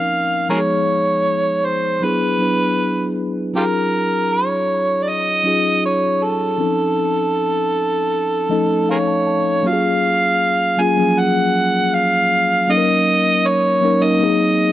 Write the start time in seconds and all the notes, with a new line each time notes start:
Already playing: F3 C4 C#4 D#4 A#4 F5
0.49 F3 G#3 B3 D#4 F#4 G#4 A#4 C#5
0.58 G#4
1.65 C5
2.01 F#3 B3 D4 E4 G#4 B4
2.39 F#3 B3 D4 E4 B4
3.53 F#3 C#4 D#4 F4 G4 G#4 A#4
4.33 C#5
5.03 D5
5.09 D#5
5.44 F#3 C#4 D#4 F4 G#4
5.86 C#5
6.23 A4
6.58 F3 C4 C#4 D#4 A4
8.49 F3 A3 C#4 D#4 A4 D#5
8.89 G#4 A#4 C#5 F5
9.08 A5
9.27 A5
9.63 F#3 A#3 C#4 F4 F#4
9.67 F5
9.73 G#4
10.77 F#3 A#3 C#4 F4 G#4 G#5
10.96 F3 F#3 A#3 C#4 G#4
11.19 F#5
11.95 F5
12.67 F#3 A#3 C#4 D#4 A4
12.71 D#5
12.78 A#4
13.47 C#5
13.81 F#3 A#3 C#4 D#4 A#4
14.00 F#3 A#3 C#4 D#4 A#4 D#5
14.20 F#3 A#3 C4 D#4 G#4